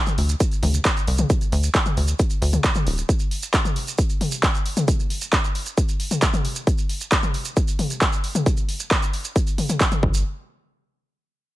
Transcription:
0.06 mid tom, maracas
0.18 analog synth bass D2, open hi-hat
0.29 closed hi-hat, maracas
0.40 kick, closed hi-hat, maracas
0.51 closed hi-hat, maracas
0.63 analog synth bass D2, open hi-hat, mid tom
0.74 closed hi-hat, maracas
0.85 kick, clap, closed hi-hat, maracas
0.97 maracas
1.07 analog synth bass C2, open hi-hat
1.18 closed hi-hat, mid tom, maracas
1.30 kick, closed hi-hat, maracas
1.41 closed hi-hat, maracas
1.52 analog synth bass D2, open hi-hat
1.63 closed hi-hat, maracas
1.75 kick, clap, closed hi-hat, maracas
1.86 mid tom, maracas
1.97 analog synth bass D2, open hi-hat
2.08 closed hi-hat, maracas
2.19 kick, closed hi-hat, maracas
2.30 closed hi-hat, maracas
2.42 analog synth bass D2, open hi-hat
2.53 closed hi-hat, mid tom, maracas
2.64 kick, clap, closed hi-hat, maracas
2.75 mid tom, maracas
2.87 analog synth bass D1, open hi-hat
2.98 closed hi-hat, maracas
3.09 kick, closed hi-hat, maracas
3.19 maracas
3.31 open hi-hat
3.43 closed hi-hat, maracas
3.54 kick, clap, closed hi-hat, maracas
3.65 mid tom, maracas
3.76 open hi-hat
3.87 closed hi-hat, maracas
3.98 kick, closed hi-hat, maracas
4.10 closed hi-hat, maracas
4.21 open hi-hat, mid tom
4.32 closed hi-hat, maracas
4.43 kick, clap, closed hi-hat, maracas
4.55 maracas
4.66 open hi-hat
4.77 closed hi-hat, mid tom, maracas
4.88 kick, closed hi-hat, maracas
5.00 maracas
5.10 open hi-hat
5.21 closed hi-hat, maracas
5.32 kick, clap, closed hi-hat, maracas
5.44 maracas
5.55 open hi-hat
5.66 closed hi-hat, maracas
5.77 kick, closed hi-hat, maracas
5.89 closed hi-hat, maracas
6.00 open hi-hat
6.11 closed hi-hat, mid tom, maracas
6.22 kick, clap, closed hi-hat, maracas
6.33 mid tom, maracas
6.45 open hi-hat
6.56 closed hi-hat, maracas
6.67 kick, closed hi-hat, maracas
6.78 maracas
6.89 open hi-hat
7.01 closed hi-hat, maracas
7.12 kick, clap, closed hi-hat, maracas
7.23 mid tom, maracas
7.34 open hi-hat
7.45 closed hi-hat, maracas
7.57 kick, closed hi-hat, maracas
7.68 closed hi-hat, maracas
7.79 open hi-hat, mid tom
7.90 closed hi-hat, maracas
8.01 kick, clap, closed hi-hat, maracas
8.13 maracas
8.24 open hi-hat
8.35 closed hi-hat, mid tom, maracas
8.46 kick, closed hi-hat, maracas
8.57 closed hi-hat, maracas
8.69 open hi-hat
8.80 closed hi-hat, maracas
8.91 kick, clap, closed hi-hat, maracas
9.02 closed hi-hat, maracas
9.13 open hi-hat
9.25 closed hi-hat, maracas
9.36 kick, closed hi-hat, maracas
9.47 closed hi-hat, maracas
9.58 open hi-hat, mid tom
9.69 closed hi-hat, mid tom, maracas
9.80 kick, clap, closed hi-hat, maracas
9.92 closed hi-hat, mid tom, maracas
10.03 analog synth bass G1, kick
10.14 maracas

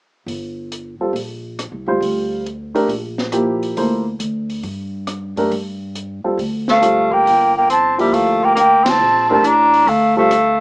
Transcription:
0.26 upright bass G1, open hi-hat
0.72 closed hi-hat
1.00 grand piano G3 C4 F4 A4, muted upright bass stroke
1.13 upright bass A#1, open hi-hat
1.59 cross-stick, closed hi-hat
1.72 upright bass C2
1.86 upright bass D2, grand piano G3 C4 F4 C5
2.00 upright bass D2, open hi-hat
2.46 closed hi-hat
2.75 grand piano A3 D4 G4 A#4, open hi-hat
2.88 upright bass A#1, open hi-hat
3.18 snare
3.32 grand piano F3 A#3 E4 G4, cross-stick, closed hi-hat
3.63 open hi-hat
3.77 upright bass D2, grand piano A#3 E4 A4 C5, open hi-hat
4.19 upright bass D2, closed hi-hat
4.50 open hi-hat
4.63 upright bass G2, open hi-hat
5.07 cross-stick, closed hi-hat
5.36 upright bass F#2, grand piano A3 D4 G4 A#4, open hi-hat
5.51 upright bass G2, open hi-hat
5.95 closed hi-hat
6.24 grand piano G3 C4 F4 A4, muted upright bass stroke
6.37 upright bass D2, open hi-hat
6.68 tenor saxophone A3, flute F5, snare
6.81 grand piano G3 C4 F4 A4, cross-stick, closed hi-hat
7.12 tenor saxophone A#3, flute G5, kick
7.26 upright bass G1, open hi-hat
7.57 tenor saxophone A#3, flute G5
7.70 tenor saxophone C4, flute A5, closed hi-hat
7.98 grand piano F3 A#3 E4 G4, tenor saxophone G3, flute E5, open hi-hat
8.11 upright bass D2, tenor saxophone A3, flute F5, open hi-hat
8.44 tenor saxophone A#3, flute G5
8.55 tenor saxophone A#3, flute G5, cross-stick, closed hi-hat
8.84 upright bass F#1, tenor saxophone C4, snare, ride
8.89 flute A5
8.99 upright bass A#1
9.29 grand piano A3 D4 G4 A#4, tenor saxophone C4, flute A5
9.42 upright bass A1, tenor saxophone D4, closed hi-hat
9.47 flute A#5
9.74 open hi-hat
9.86 upright bass D2, tenor saxophone A3, flute F5, open hi-hat
10.16 grand piano G3 C4 F4 A4, tenor saxophone A3, flute F5
10.31 cross-stick, closed hi-hat

